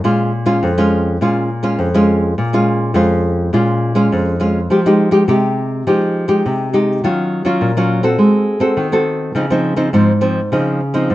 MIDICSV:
0, 0, Header, 1, 2, 480
1, 0, Start_track
1, 0, Key_signature, -5, "minor"
1, 0, Tempo, 583090
1, 27, Time_signature, 4, 2, 24, 8
1, 3864, Key_signature, -4, "minor"
1, 9177, End_track
2, 0, Start_track
2, 0, Title_t, "Nylon-string guitar"
2, 0, Program_c, 0, 24
2, 33, Note_on_c, 0, 46, 74
2, 34, Note_on_c, 0, 56, 59
2, 35, Note_on_c, 0, 61, 55
2, 39, Note_on_c, 0, 65, 69
2, 254, Note_off_c, 0, 56, 0
2, 256, Note_off_c, 0, 61, 0
2, 258, Note_off_c, 0, 65, 0
2, 375, Note_on_c, 0, 56, 66
2, 379, Note_on_c, 0, 61, 60
2, 381, Note_on_c, 0, 65, 69
2, 486, Note_off_c, 0, 46, 0
2, 516, Note_on_c, 0, 41, 80
2, 583, Note_off_c, 0, 56, 0
2, 584, Note_off_c, 0, 61, 0
2, 584, Note_off_c, 0, 65, 0
2, 639, Note_on_c, 0, 56, 69
2, 642, Note_on_c, 0, 61, 68
2, 644, Note_on_c, 0, 65, 76
2, 954, Note_off_c, 0, 56, 0
2, 955, Note_off_c, 0, 61, 0
2, 955, Note_off_c, 0, 65, 0
2, 967, Note_off_c, 0, 41, 0
2, 996, Note_on_c, 0, 46, 69
2, 999, Note_on_c, 0, 56, 55
2, 1004, Note_on_c, 0, 61, 57
2, 1007, Note_on_c, 0, 65, 68
2, 1216, Note_off_c, 0, 56, 0
2, 1220, Note_off_c, 0, 61, 0
2, 1221, Note_off_c, 0, 65, 0
2, 1340, Note_on_c, 0, 56, 58
2, 1344, Note_on_c, 0, 61, 65
2, 1347, Note_on_c, 0, 65, 73
2, 1448, Note_off_c, 0, 46, 0
2, 1470, Note_on_c, 0, 41, 79
2, 1544, Note_off_c, 0, 56, 0
2, 1547, Note_off_c, 0, 61, 0
2, 1547, Note_off_c, 0, 65, 0
2, 1600, Note_on_c, 0, 56, 76
2, 1603, Note_on_c, 0, 61, 65
2, 1608, Note_on_c, 0, 65, 76
2, 1914, Note_off_c, 0, 56, 0
2, 1916, Note_off_c, 0, 61, 0
2, 1918, Note_off_c, 0, 65, 0
2, 1924, Note_off_c, 0, 41, 0
2, 1959, Note_on_c, 0, 46, 77
2, 2084, Note_on_c, 0, 56, 59
2, 2087, Note_on_c, 0, 61, 67
2, 2091, Note_on_c, 0, 65, 73
2, 2396, Note_off_c, 0, 56, 0
2, 2398, Note_off_c, 0, 61, 0
2, 2399, Note_off_c, 0, 65, 0
2, 2408, Note_off_c, 0, 46, 0
2, 2421, Note_on_c, 0, 41, 81
2, 2424, Note_on_c, 0, 56, 60
2, 2426, Note_on_c, 0, 61, 61
2, 2432, Note_on_c, 0, 65, 70
2, 2864, Note_off_c, 0, 56, 0
2, 2867, Note_off_c, 0, 61, 0
2, 2870, Note_off_c, 0, 65, 0
2, 2879, Note_off_c, 0, 41, 0
2, 2905, Note_on_c, 0, 46, 72
2, 2907, Note_on_c, 0, 56, 56
2, 2911, Note_on_c, 0, 61, 59
2, 2915, Note_on_c, 0, 65, 62
2, 3227, Note_off_c, 0, 56, 0
2, 3229, Note_off_c, 0, 61, 0
2, 3231, Note_off_c, 0, 65, 0
2, 3252, Note_on_c, 0, 56, 71
2, 3256, Note_on_c, 0, 61, 67
2, 3261, Note_on_c, 0, 65, 71
2, 3361, Note_off_c, 0, 46, 0
2, 3395, Note_on_c, 0, 41, 81
2, 3580, Note_off_c, 0, 56, 0
2, 3582, Note_off_c, 0, 61, 0
2, 3583, Note_off_c, 0, 65, 0
2, 3620, Note_on_c, 0, 56, 61
2, 3623, Note_on_c, 0, 61, 63
2, 3628, Note_on_c, 0, 65, 66
2, 3777, Note_off_c, 0, 56, 0
2, 3778, Note_off_c, 0, 61, 0
2, 3779, Note_off_c, 0, 65, 0
2, 3845, Note_off_c, 0, 41, 0
2, 3870, Note_on_c, 0, 53, 68
2, 3873, Note_on_c, 0, 56, 57
2, 3878, Note_on_c, 0, 63, 59
2, 3881, Note_on_c, 0, 67, 60
2, 3940, Note_off_c, 0, 56, 0
2, 3943, Note_off_c, 0, 63, 0
2, 3944, Note_off_c, 0, 67, 0
2, 4000, Note_on_c, 0, 56, 68
2, 4003, Note_on_c, 0, 63, 60
2, 4007, Note_on_c, 0, 67, 64
2, 4194, Note_off_c, 0, 56, 0
2, 4195, Note_off_c, 0, 63, 0
2, 4197, Note_off_c, 0, 67, 0
2, 4208, Note_on_c, 0, 56, 57
2, 4213, Note_on_c, 0, 63, 58
2, 4216, Note_on_c, 0, 67, 74
2, 4298, Note_off_c, 0, 56, 0
2, 4299, Note_off_c, 0, 63, 0
2, 4301, Note_off_c, 0, 67, 0
2, 4323, Note_off_c, 0, 53, 0
2, 4345, Note_on_c, 0, 48, 71
2, 4347, Note_on_c, 0, 56, 55
2, 4352, Note_on_c, 0, 63, 58
2, 4354, Note_on_c, 0, 67, 69
2, 4787, Note_off_c, 0, 56, 0
2, 4788, Note_off_c, 0, 63, 0
2, 4791, Note_off_c, 0, 67, 0
2, 4801, Note_off_c, 0, 48, 0
2, 4830, Note_on_c, 0, 56, 55
2, 4831, Note_on_c, 0, 53, 74
2, 4832, Note_on_c, 0, 63, 53
2, 4837, Note_on_c, 0, 67, 58
2, 5148, Note_off_c, 0, 56, 0
2, 5150, Note_off_c, 0, 63, 0
2, 5152, Note_off_c, 0, 67, 0
2, 5169, Note_on_c, 0, 56, 64
2, 5175, Note_on_c, 0, 63, 59
2, 5176, Note_on_c, 0, 67, 73
2, 5284, Note_off_c, 0, 53, 0
2, 5315, Note_on_c, 0, 48, 76
2, 5499, Note_off_c, 0, 56, 0
2, 5500, Note_off_c, 0, 63, 0
2, 5502, Note_off_c, 0, 67, 0
2, 5543, Note_on_c, 0, 56, 61
2, 5545, Note_on_c, 0, 63, 64
2, 5551, Note_on_c, 0, 67, 59
2, 5764, Note_off_c, 0, 56, 0
2, 5765, Note_off_c, 0, 63, 0
2, 5766, Note_off_c, 0, 48, 0
2, 5768, Note_off_c, 0, 67, 0
2, 5793, Note_on_c, 0, 51, 69
2, 5797, Note_on_c, 0, 54, 60
2, 5800, Note_on_c, 0, 61, 54
2, 5800, Note_on_c, 0, 65, 63
2, 6112, Note_off_c, 0, 54, 0
2, 6112, Note_off_c, 0, 61, 0
2, 6114, Note_off_c, 0, 65, 0
2, 6131, Note_on_c, 0, 54, 62
2, 6135, Note_on_c, 0, 61, 59
2, 6142, Note_on_c, 0, 65, 70
2, 6246, Note_off_c, 0, 51, 0
2, 6265, Note_on_c, 0, 46, 73
2, 6339, Note_off_c, 0, 54, 0
2, 6341, Note_off_c, 0, 61, 0
2, 6345, Note_off_c, 0, 65, 0
2, 6395, Note_on_c, 0, 54, 65
2, 6399, Note_on_c, 0, 61, 69
2, 6400, Note_on_c, 0, 65, 71
2, 6592, Note_off_c, 0, 54, 0
2, 6592, Note_off_c, 0, 61, 0
2, 6594, Note_off_c, 0, 65, 0
2, 6611, Note_on_c, 0, 60, 68
2, 6616, Note_on_c, 0, 66, 64
2, 6620, Note_on_c, 0, 69, 64
2, 6721, Note_off_c, 0, 46, 0
2, 6738, Note_on_c, 0, 56, 65
2, 7059, Note_off_c, 0, 60, 0
2, 7062, Note_off_c, 0, 66, 0
2, 7062, Note_off_c, 0, 69, 0
2, 7080, Note_on_c, 0, 60, 64
2, 7087, Note_on_c, 0, 66, 59
2, 7088, Note_on_c, 0, 69, 71
2, 7197, Note_off_c, 0, 56, 0
2, 7218, Note_on_c, 0, 51, 73
2, 7294, Note_off_c, 0, 60, 0
2, 7297, Note_off_c, 0, 66, 0
2, 7298, Note_off_c, 0, 69, 0
2, 7344, Note_on_c, 0, 60, 58
2, 7347, Note_on_c, 0, 66, 57
2, 7351, Note_on_c, 0, 69, 70
2, 7666, Note_off_c, 0, 60, 0
2, 7668, Note_off_c, 0, 66, 0
2, 7670, Note_off_c, 0, 69, 0
2, 7677, Note_off_c, 0, 51, 0
2, 7695, Note_on_c, 0, 49, 70
2, 7702, Note_on_c, 0, 53, 57
2, 7703, Note_on_c, 0, 60, 58
2, 7707, Note_on_c, 0, 63, 62
2, 7774, Note_off_c, 0, 53, 0
2, 7776, Note_off_c, 0, 60, 0
2, 7778, Note_off_c, 0, 63, 0
2, 7824, Note_on_c, 0, 53, 64
2, 7827, Note_on_c, 0, 60, 61
2, 7835, Note_on_c, 0, 63, 68
2, 8026, Note_off_c, 0, 53, 0
2, 8028, Note_off_c, 0, 60, 0
2, 8030, Note_off_c, 0, 63, 0
2, 8038, Note_on_c, 0, 53, 59
2, 8042, Note_on_c, 0, 60, 63
2, 8044, Note_on_c, 0, 63, 61
2, 8133, Note_off_c, 0, 53, 0
2, 8136, Note_off_c, 0, 60, 0
2, 8136, Note_off_c, 0, 63, 0
2, 8157, Note_off_c, 0, 49, 0
2, 8175, Note_on_c, 0, 44, 73
2, 8180, Note_on_c, 0, 60, 55
2, 8181, Note_on_c, 0, 53, 54
2, 8184, Note_on_c, 0, 63, 60
2, 8323, Note_off_c, 0, 53, 0
2, 8324, Note_off_c, 0, 60, 0
2, 8326, Note_off_c, 0, 63, 0
2, 8406, Note_on_c, 0, 53, 55
2, 8409, Note_on_c, 0, 60, 60
2, 8411, Note_on_c, 0, 63, 63
2, 8557, Note_off_c, 0, 53, 0
2, 8557, Note_off_c, 0, 60, 0
2, 8559, Note_off_c, 0, 63, 0
2, 8637, Note_off_c, 0, 44, 0
2, 8659, Note_on_c, 0, 49, 70
2, 8664, Note_on_c, 0, 53, 53
2, 8665, Note_on_c, 0, 63, 60
2, 8667, Note_on_c, 0, 60, 54
2, 8889, Note_off_c, 0, 53, 0
2, 8889, Note_off_c, 0, 60, 0
2, 8890, Note_off_c, 0, 63, 0
2, 9004, Note_on_c, 0, 53, 69
2, 9008, Note_on_c, 0, 60, 64
2, 9011, Note_on_c, 0, 63, 63
2, 9120, Note_off_c, 0, 49, 0
2, 9139, Note_on_c, 0, 44, 72
2, 9177, Note_off_c, 0, 44, 0
2, 9177, Note_off_c, 0, 53, 0
2, 9177, Note_off_c, 0, 60, 0
2, 9177, Note_off_c, 0, 63, 0
2, 9177, End_track
0, 0, End_of_file